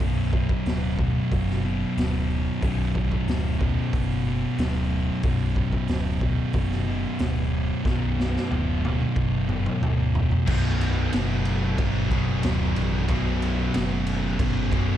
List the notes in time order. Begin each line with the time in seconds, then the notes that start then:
0.00 B0 B1 F#2 B2, kick, open hi-hat
0.33 kick
0.49 kick
0.66 D1, snare, open hi-hat
0.98 B1 F#2 B2, kick
1.32 F#1, kick, open hi-hat
1.51 snare
1.65 B1 F#2 B2
1.97 D1 B1 F#2 B2, snare, open hi-hat
2.62 B0 B1 F#2 B2, kick, open hi-hat
2.95 kick
3.12 kick
3.28 D1, snare, open hi-hat
3.59 B1 F#2 B2, kick
3.93 F#1, kick, open hi-hat
4.26 B1 F#2 B2
4.58 D1 B1 F#2 B2, snare, open hi-hat
5.23 B0 B1 F#2 B2, kick, open hi-hat
5.56 kick
5.72 kick
5.88 D1, snare, open hi-hat
6.21 B1 F#2 B2, kick
6.53 F#1, kick, open hi-hat
6.71 snare
6.87 B1 F#2 B2
7.19 D1 B1 F#2 B2, snare, open hi-hat
7.85 B0 B1 F#2 B2, kick, snare
8.20 snare
8.37 snare
8.51 D1, high tom
8.83 F#2 B2, high tom
8.87 B1
9.00 mid tom
9.16 F#1, kick, mid tom
9.49 B1 F#2 B2, mid tom
9.66 mid tom
9.82 D1 B1 F#2 B2, mid tom
10.15 floor tom
10.31 floor tom
10.46 B0 B1 F#2 B2, kick, crash
10.50 B2
10.81 crash
11.13 F#1, snare, crash
11.45 crash
11.78 G1 B1 F#2 B2, kick, crash
12.10 F#1 B1 F#2 B2, kick, crash
12.42 D1 B1 F#2, snare, crash
12.47 B2
12.76 A1, crash
13.07 B0 B1 F#2 B2, kick, crash
13.42 crash
13.74 F#1, snare, crash
14.07 crash
14.38 G1 B1 F#2 B2, kick, crash
14.71 F#1 B1 F#2 B2, kick, crash